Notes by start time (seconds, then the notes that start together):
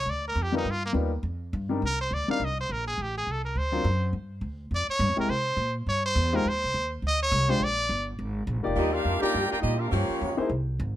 0.00 C#5
0.06 D2 D5
0.28 A#4
0.35 F2
0.42 G4
0.52 G3 B3 D#4 F4 A#4
0.57 D#4
0.65 G2
0.71 F4
0.85 A#3
0.93 D#2 G3 B3 D#4 F4 A#4
1.23 F2
1.53 G2
1.69 G3 C4 D4 D#4 A#4
1.82 C2 A#4
2.01 C5
2.11 D2 D5
2.28 G3 C4 D4 D#4 A#4 F5, muted upright bass stroke
2.40 C2
2.45 D#5
2.60 C5
2.69 A#1 A#4
2.87 G#4
2.98 A1
3.02 G4
3.18 G#4
3.27 C2
3.32 A4
3.45 A#4
3.55 D2 C5
3.72 F#3 C4 D4 F4 A#4
3.84 F#2
4.13 G2
4.41 D2
4.71 F2
4.75 D5
4.88 C#5, muted upright bass stroke
4.99 G2
5.09 F2
5.16 D2 G#3 C4 E4 G4 A#4
5.29 C3 C5
5.57 A#2
5.86 G2 C#5
6.06 C5
6.15 E2
6.33 G#3 D#4 F4 G4 A#4 C5
6.45 F2 C5
6.54 D#2
6.64 C2
6.74 D#2
7.02 D2
7.07 D#5
7.23 C#5
7.32 C2
7.48 G#3 D4 F4 G4 C5
7.60 A#1
7.64 D5
7.89 G1
8.19 G#1
8.47 A#1
8.56 G#1
8.63 F1 A#3 D#4 F4 G4 D5
8.74 D#2 F3 G3 A#3 D4 D#4 F4 G4 D#5
8.92 A#3 D4 F4 G4 A#4 F5
9.05 F2
9.20 A#3 D4 D#4 F4 G4 A#4 D5 G5, muted upright bass stroke
9.34 G2
9.47 A#3 D4 F4 G4 A#4 D5 G5
9.52 muted upright bass stroke
9.59 G3 A#3 D#4 F4 G4 D#5
9.63 A#2
9.77 A#3 D4 F4 G4 A#4 F5
9.90 G2 F3 A#3 C#4 F4 G4 C#5
10.09 muted upright bass stroke
10.21 F2
10.37 A#3 D#4 E4 G#4 C5, muted upright bass stroke
10.49 C2
10.80 G#1